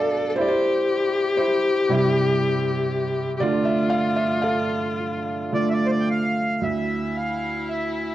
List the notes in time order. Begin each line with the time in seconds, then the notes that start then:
Already playing: A4 B4 D5 E5 F5
0.30 A4
0.36 E4 G4 C5
0.41 D5
0.48 C5
1.37 E4 C5
1.89 C3 G3 E4
3.37 D3 G4 D5
3.42 A3 F4
3.65 E5
3.90 F5
4.16 E5
4.42 A4 F5
5.52 D3 A3 F4 D5
5.70 D5 E5
5.86 C5 D5
6.00 G5
6.10 F5
6.61 D2 E4 E5
7.16 F5
7.69 E5